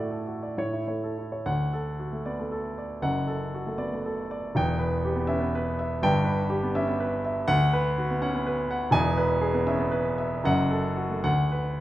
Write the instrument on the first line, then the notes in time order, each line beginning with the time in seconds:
grand piano
Already playing: A2 A3 F#4 D5
0.11 A4
0.27 F#4
0.43 D5
0.58 A2 C#5
0.73 E4
0.87 A3 C#5
1.04 A4
1.18 E4
1.32 C#5
1.46 D2 F#5
1.73 A4
1.99 F#4
2.13 A3
2.26 B3 D5
2.39 A3
2.52 A4
2.78 D5
3.02 F#1 F#2 F#5
3.27 A4
3.54 F#4
3.67 A3
3.78 B3 D5
3.93 A3
4.06 A4
4.31 D5
4.55 E1 E2 G5
4.79 B4
5.05 G4
5.16 B3
5.27 C#4 E5
5.40 B3
5.55 B4
5.79 E5
6.02 G1 G2 G5
6.25 B4
6.50 G4
6.63 B3
6.75 C#4 E5
6.87 B3
7.00 B4
7.25 E5
7.48 D2 F#5
7.73 B4
7.98 F#4
8.11 B3
8.22 C#4 F#5
8.34 B3
8.47 B4
8.71 F#5
8.91 E1 E2 G#5
9.17 B4
9.41 G#4
9.54 B3
9.67 C#4 E5
9.79 B3
9.91 B4
10.18 E5
10.44 F#1 F#2 F#5
10.71 A4
10.97 F#4
11.10 A3
11.24 D2 F#5
11.52 B4